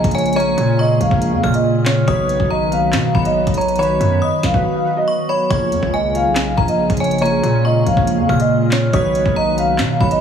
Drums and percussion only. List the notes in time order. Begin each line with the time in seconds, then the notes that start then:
0.04 kick, closed hi-hat
0.11 closed hi-hat
0.18 closed hi-hat
0.26 closed hi-hat
0.33 closed hi-hat
0.40 closed hi-hat
0.58 closed hi-hat
1.01 closed hi-hat
1.11 kick
1.22 closed hi-hat
1.44 kick
1.54 closed hi-hat
1.86 snare, clap, closed hi-hat
2.08 kick, closed hi-hat
2.29 closed hi-hat
2.40 kick
2.72 closed hi-hat
2.93 snare, clap, closed hi-hat
3.15 kick
3.25 closed hi-hat
3.47 kick, closed hi-hat
3.54 closed hi-hat
3.61 closed hi-hat
3.68 closed hi-hat
3.76 closed hi-hat
3.83 closed hi-hat
4.01 closed hi-hat
4.43 snare, closed hi-hat
4.54 kick
5.51 kick, closed hi-hat
5.72 closed hi-hat
5.83 kick
6.15 closed hi-hat
6.36 snare, clap, closed hi-hat
6.58 kick
6.68 closed hi-hat
6.90 kick, closed hi-hat
6.97 closed hi-hat
7.04 closed hi-hat
7.11 closed hi-hat
7.18 closed hi-hat
7.26 closed hi-hat
7.44 closed hi-hat
7.87 closed hi-hat
7.97 kick
8.07 closed hi-hat
8.29 kick
8.40 closed hi-hat
8.71 snare, clap, closed hi-hat
8.93 kick, closed hi-hat
9.15 closed hi-hat
9.26 kick
9.58 closed hi-hat
9.79 snare, clap, closed hi-hat
10.01 kick
10.11 closed hi-hat